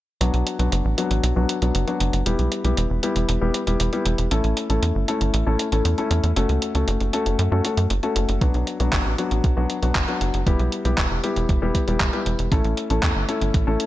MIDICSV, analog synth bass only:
0, 0, Header, 1, 2, 480
1, 0, Start_track
1, 0, Key_signature, 2, "minor"
1, 0, Tempo, 512821
1, 196, Time_signature, 4, 2, 24, 8
1, 12975, End_track
2, 0, Start_track
2, 0, Title_t, "Analog synth bass"
2, 0, Program_c, 0, 38
2, 195, Note_on_c, 0, 35, 97
2, 289, Note_off_c, 0, 35, 0
2, 315, Note_on_c, 0, 35, 76
2, 409, Note_off_c, 0, 35, 0
2, 555, Note_on_c, 0, 35, 75
2, 649, Note_off_c, 0, 35, 0
2, 675, Note_on_c, 0, 30, 100
2, 769, Note_off_c, 0, 30, 0
2, 795, Note_on_c, 0, 33, 77
2, 889, Note_off_c, 0, 33, 0
2, 1035, Note_on_c, 0, 33, 76
2, 1129, Note_off_c, 0, 33, 0
2, 1155, Note_on_c, 0, 35, 94
2, 1249, Note_off_c, 0, 35, 0
2, 1275, Note_on_c, 0, 35, 76
2, 1369, Note_off_c, 0, 35, 0
2, 1516, Note_on_c, 0, 35, 79
2, 1610, Note_off_c, 0, 35, 0
2, 1636, Note_on_c, 0, 30, 96
2, 1730, Note_off_c, 0, 30, 0
2, 1875, Note_on_c, 0, 30, 92
2, 1969, Note_off_c, 0, 30, 0
2, 1995, Note_on_c, 0, 30, 76
2, 2089, Note_off_c, 0, 30, 0
2, 2115, Note_on_c, 0, 28, 92
2, 2209, Note_off_c, 0, 28, 0
2, 2235, Note_on_c, 0, 35, 75
2, 2329, Note_off_c, 0, 35, 0
2, 2475, Note_on_c, 0, 35, 78
2, 2569, Note_off_c, 0, 35, 0
2, 2595, Note_on_c, 0, 28, 98
2, 2689, Note_off_c, 0, 28, 0
2, 2716, Note_on_c, 0, 28, 75
2, 2809, Note_off_c, 0, 28, 0
2, 2955, Note_on_c, 0, 28, 78
2, 3049, Note_off_c, 0, 28, 0
2, 3076, Note_on_c, 0, 28, 95
2, 3169, Note_off_c, 0, 28, 0
2, 3196, Note_on_c, 0, 28, 78
2, 3289, Note_off_c, 0, 28, 0
2, 3436, Note_on_c, 0, 28, 74
2, 3530, Note_off_c, 0, 28, 0
2, 3556, Note_on_c, 0, 28, 94
2, 3650, Note_off_c, 0, 28, 0
2, 3796, Note_on_c, 0, 28, 92
2, 3889, Note_off_c, 0, 28, 0
2, 3916, Note_on_c, 0, 28, 78
2, 4010, Note_off_c, 0, 28, 0
2, 4036, Note_on_c, 0, 33, 93
2, 4129, Note_off_c, 0, 33, 0
2, 4156, Note_on_c, 0, 33, 74
2, 4249, Note_off_c, 0, 33, 0
2, 4396, Note_on_c, 0, 33, 77
2, 4490, Note_off_c, 0, 33, 0
2, 4516, Note_on_c, 0, 40, 103
2, 4610, Note_off_c, 0, 40, 0
2, 4636, Note_on_c, 0, 31, 74
2, 4729, Note_off_c, 0, 31, 0
2, 4876, Note_on_c, 0, 31, 80
2, 4970, Note_off_c, 0, 31, 0
2, 4996, Note_on_c, 0, 33, 93
2, 5089, Note_off_c, 0, 33, 0
2, 5115, Note_on_c, 0, 33, 80
2, 5209, Note_off_c, 0, 33, 0
2, 5356, Note_on_c, 0, 33, 80
2, 5449, Note_off_c, 0, 33, 0
2, 5476, Note_on_c, 0, 40, 96
2, 5569, Note_off_c, 0, 40, 0
2, 5716, Note_on_c, 0, 40, 91
2, 5810, Note_off_c, 0, 40, 0
2, 5836, Note_on_c, 0, 40, 78
2, 5929, Note_off_c, 0, 40, 0
2, 5955, Note_on_c, 0, 30, 97
2, 6049, Note_off_c, 0, 30, 0
2, 6076, Note_on_c, 0, 37, 74
2, 6170, Note_off_c, 0, 37, 0
2, 6316, Note_on_c, 0, 37, 80
2, 6410, Note_off_c, 0, 37, 0
2, 6435, Note_on_c, 0, 30, 102
2, 6529, Note_off_c, 0, 30, 0
2, 6555, Note_on_c, 0, 30, 74
2, 6649, Note_off_c, 0, 30, 0
2, 6795, Note_on_c, 0, 30, 74
2, 6889, Note_off_c, 0, 30, 0
2, 6916, Note_on_c, 0, 42, 97
2, 7009, Note_off_c, 0, 42, 0
2, 7036, Note_on_c, 0, 42, 78
2, 7129, Note_off_c, 0, 42, 0
2, 7276, Note_on_c, 0, 42, 78
2, 7369, Note_off_c, 0, 42, 0
2, 7395, Note_on_c, 0, 30, 97
2, 7489, Note_off_c, 0, 30, 0
2, 7635, Note_on_c, 0, 30, 91
2, 7729, Note_off_c, 0, 30, 0
2, 7756, Note_on_c, 0, 30, 78
2, 7849, Note_off_c, 0, 30, 0
2, 7876, Note_on_c, 0, 35, 100
2, 7969, Note_off_c, 0, 35, 0
2, 7996, Note_on_c, 0, 35, 74
2, 8090, Note_off_c, 0, 35, 0
2, 8236, Note_on_c, 0, 35, 77
2, 8330, Note_off_c, 0, 35, 0
2, 8356, Note_on_c, 0, 30, 101
2, 8449, Note_off_c, 0, 30, 0
2, 8477, Note_on_c, 0, 33, 75
2, 8570, Note_off_c, 0, 33, 0
2, 8717, Note_on_c, 0, 33, 78
2, 8810, Note_off_c, 0, 33, 0
2, 8836, Note_on_c, 0, 35, 94
2, 8929, Note_off_c, 0, 35, 0
2, 8956, Note_on_c, 0, 35, 74
2, 9050, Note_off_c, 0, 35, 0
2, 9196, Note_on_c, 0, 35, 77
2, 9290, Note_off_c, 0, 35, 0
2, 9315, Note_on_c, 0, 30, 95
2, 9409, Note_off_c, 0, 30, 0
2, 9556, Note_on_c, 0, 30, 92
2, 9649, Note_off_c, 0, 30, 0
2, 9677, Note_on_c, 0, 30, 78
2, 9770, Note_off_c, 0, 30, 0
2, 9796, Note_on_c, 0, 28, 92
2, 9889, Note_off_c, 0, 28, 0
2, 9916, Note_on_c, 0, 35, 78
2, 10010, Note_off_c, 0, 35, 0
2, 10156, Note_on_c, 0, 35, 76
2, 10249, Note_off_c, 0, 35, 0
2, 10275, Note_on_c, 0, 28, 98
2, 10369, Note_off_c, 0, 28, 0
2, 10397, Note_on_c, 0, 28, 74
2, 10490, Note_off_c, 0, 28, 0
2, 10637, Note_on_c, 0, 28, 80
2, 10730, Note_off_c, 0, 28, 0
2, 10756, Note_on_c, 0, 28, 96
2, 10849, Note_off_c, 0, 28, 0
2, 10876, Note_on_c, 0, 28, 79
2, 10970, Note_off_c, 0, 28, 0
2, 11116, Note_on_c, 0, 28, 78
2, 11209, Note_off_c, 0, 28, 0
2, 11236, Note_on_c, 0, 28, 98
2, 11329, Note_off_c, 0, 28, 0
2, 11476, Note_on_c, 0, 28, 94
2, 11569, Note_off_c, 0, 28, 0
2, 11596, Note_on_c, 0, 28, 78
2, 11690, Note_off_c, 0, 28, 0
2, 11716, Note_on_c, 0, 33, 98
2, 11809, Note_off_c, 0, 33, 0
2, 11836, Note_on_c, 0, 33, 75
2, 11929, Note_off_c, 0, 33, 0
2, 12076, Note_on_c, 0, 33, 75
2, 12169, Note_off_c, 0, 33, 0
2, 12195, Note_on_c, 0, 40, 102
2, 12289, Note_off_c, 0, 40, 0
2, 12315, Note_on_c, 0, 31, 77
2, 12409, Note_off_c, 0, 31, 0
2, 12555, Note_on_c, 0, 31, 78
2, 12649, Note_off_c, 0, 31, 0
2, 12675, Note_on_c, 0, 33, 93
2, 12769, Note_off_c, 0, 33, 0
2, 12796, Note_on_c, 0, 33, 76
2, 12889, Note_off_c, 0, 33, 0
2, 12975, End_track
0, 0, End_of_file